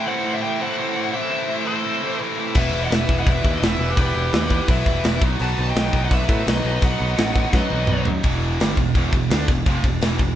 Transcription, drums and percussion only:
2.55 kick loud
2.55 crash medium
2.91 snare loud
2.91 open hi-hat medium
3.09 kick medium
3.27 kick loud
3.27 open hi-hat medium
3.44 kick medium
3.62 snare loud
3.62 open hi-hat medium
3.97 kick loud
3.97 open hi-hat medium
4.33 snare loud
4.33 open hi-hat medium
4.50 kick medium
4.68 kick loud
4.68 open hi-hat medium
4.86 kick medium
5.04 snare loud
5.04 open hi-hat medium
5.22 kick loud
5.40 open hi-hat medium
5.75 snare loud
5.75 open hi-hat medium
5.93 kick medium
6.11 kick loud
6.11 open hi-hat medium
6.29 kick medium
6.47 snare loud
6.47 open hi-hat medium
6.82 kick loud
6.82 open hi-hat medium
7.17 snare loud
7.17 open hi-hat medium
7.36 kick medium
7.53 kick loud
7.53 snare medium
7.70 high tom medium
7.87 mid tom loud
8.05 floor tom loud
8.23 kick loud
8.23 crash medium
8.42 crash medium
8.60 snare loud
8.60 crash medium
8.77 kick medium
8.77 crash medium
8.95 kick loud
8.95 crash medium
9.13 kick medium
9.13 crash medium
9.30 snare loud
9.30 crash medium
9.48 kick medium
9.48 crash medium
9.66 kick loud
9.66 crash medium
9.84 kick medium
9.84 crash medium
10.01 snare loud
10.01 crash medium
10.19 kick medium
10.19 crash medium

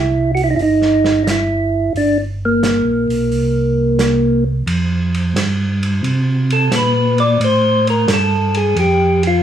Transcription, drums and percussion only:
0.37 open hi-hat soft
0.59 open hi-hat soft
0.82 snare soft
1.04 snare soft
1.27 snare medium
1.27 closed hi-hat medium
1.96 open hi-hat soft
2.63 snare medium
2.63 closed hi-hat soft
3.10 open hi-hat soft
3.32 open hi-hat soft
3.99 snare medium
3.99 closed hi-hat medium
4.67 ride medium
5.14 ride soft
5.36 snare medium
5.36 hi-hat pedal medium
5.36 ride medium
5.83 ride soft
6.04 ride medium
6.50 ride medium
6.72 snare medium
6.72 hi-hat pedal medium
6.72 ride medium
7.18 ride soft
7.41 ride medium
7.87 ride soft
8.08 snare medium
8.08 hi-hat pedal medium
8.08 ride medium
8.54 ride medium
8.77 ride medium
9.23 ride medium

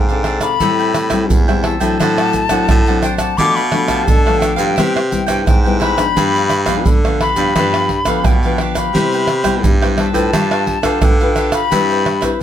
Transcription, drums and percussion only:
0.09 pandeiro soft
0.09 shaker soft
0.24 pandeiro medium
0.24 tamborim medium
0.41 pandeiro medium
0.41 tamborim medium
0.41 shaker medium
0.41 surdo soft
0.60 pandeiro medium
0.60 shaker medium
0.60 surdo medium
0.79 pandeiro soft
0.79 shaker soft
0.94 pandeiro medium
0.94 tamborim medium
0.94 shaker medium
1.10 pandeiro medium
1.10 tamborim medium
1.10 shaker medium
1.10 surdo soft
1.30 pandeiro medium
1.30 shaker medium
1.30 surdo loud
1.49 pandeiro soft
1.49 tamborim medium
1.49 shaker soft
1.64 pandeiro medium
1.64 tamborim medium
1.81 pandeiro medium
1.81 shaker medium
1.81 surdo soft
2.00 pandeiro medium
2.00 tamborim medium
2.00 shaker medium
2.00 surdo medium
2.18 pandeiro soft
2.18 tamborim medium
2.18 shaker soft
2.33 pandeiro medium
2.33 shaker medium
2.33 surdo soft
2.49 pandeiro medium
2.49 tamborim medium
2.49 shaker medium
2.49 surdo soft
2.69 pandeiro medium
2.69 tamborim medium
2.69 shaker medium
2.69 surdo loud
2.86 pandeiro soft
2.86 shaker soft
3.02 pandeiro medium
3.02 tamborim medium
3.02 shaker medium
3.18 pandeiro medium
3.18 tamborim medium
3.18 shaker medium
3.18 surdo soft
3.38 pandeiro medium
3.38 shaker medium
3.38 surdo medium
3.57 pandeiro soft
3.57 shaker soft
3.72 pandeiro medium
3.72 tamborim medium
3.88 pandeiro medium
3.88 tamborim medium
3.88 shaker medium
3.88 surdo soft
4.08 pandeiro medium
4.08 shaker medium
4.08 surdo loud
4.27 pandeiro soft
4.27 tamborim medium
4.27 shaker soft
4.42 pandeiro medium
4.42 tamborim medium
4.42 shaker medium
4.58 pandeiro medium
4.58 shaker medium
4.58 surdo soft
4.78 pandeiro medium
4.78 tamborim medium
4.78 shaker medium
4.78 surdo medium
4.96 pandeiro soft
4.96 tamborim medium
4.96 shaker soft
5.12 pandeiro medium
5.12 shaker medium
5.12 surdo soft
5.28 pandeiro medium
5.28 tamborim medium
5.28 shaker medium
5.28 surdo soft
5.47 pandeiro medium
5.47 tamborim medium
5.47 shaker medium
5.47 surdo loud
5.66 pandeiro soft
5.66 shaker soft
5.82 pandeiro soft
5.82 tamborim medium
5.98 pandeiro medium
5.98 tamborim medium
5.98 shaker medium
5.98 surdo soft
6.17 pandeiro medium
6.17 shaker medium
6.17 surdo medium
6.35 pandeiro soft
6.35 shaker soft
6.50 pandeiro medium
6.50 tamborim medium
6.50 shaker medium
6.66 pandeiro medium
6.66 tamborim medium
6.66 shaker medium
6.66 surdo soft
6.86 pandeiro medium
6.86 shaker medium
6.86 surdo loud
7.05 pandeiro soft
7.05 tamborim medium
7.05 shaker soft
7.21 pandeiro medium
7.21 tamborim medium
7.36 pandeiro medium
7.36 shaker medium
7.36 surdo soft
7.56 pandeiro medium
7.56 tamborim medium
7.56 shaker medium
7.56 surdo medium
7.74 pandeiro soft
7.74 tamborim medium
7.74 shaker soft
7.89 pandeiro medium
7.89 surdo soft
8.05 pandeiro medium
8.05 tamborim medium
8.05 shaker medium
8.05 surdo soft
8.25 pandeiro medium
8.25 tamborim medium
8.25 shaker medium
8.25 surdo loud
8.43 pandeiro soft
8.43 shaker soft
8.58 pandeiro medium
8.58 tamborim medium
8.75 pandeiro medium
8.75 tamborim medium
8.75 shaker medium
8.75 surdo soft
8.95 pandeiro medium
8.95 shaker medium
8.95 surdo medium
9.12 pandeiro soft
9.12 shaker soft
9.27 pandeiro medium
9.27 tamborim medium
9.44 pandeiro medium
9.44 tamborim medium
9.44 shaker medium
9.44 surdo soft
9.64 pandeiro medium
9.64 shaker medium
9.64 surdo loud
9.82 pandeiro soft
9.82 tamborim medium
9.82 shaker soft
9.98 pandeiro medium
9.98 tamborim medium
10.15 pandeiro medium
10.15 shaker medium
10.15 surdo soft
10.33 pandeiro medium
10.33 tamborim medium
10.33 shaker medium
10.33 surdo medium
10.51 pandeiro soft
10.51 tamborim medium
10.51 shaker soft
10.67 pandeiro medium
10.67 surdo soft
10.83 pandeiro medium
10.83 tamborim medium
10.83 shaker medium
10.83 surdo soft
11.02 pandeiro medium
11.02 tamborim medium
11.02 shaker medium
11.02 surdo loud
11.20 pandeiro soft
11.20 shaker soft
11.36 pandeiro medium
11.36 tamborim medium
11.36 shaker medium
11.52 pandeiro medium
11.52 tamborim medium
11.52 shaker medium
11.52 surdo soft
11.72 pandeiro medium
11.72 shaker medium
11.72 surdo medium
11.91 pandeiro soft
11.91 shaker soft
12.06 pandeiro medium
12.06 tamborim medium
12.22 pandeiro medium
12.22 tamborim medium
12.22 shaker medium
12.22 surdo soft

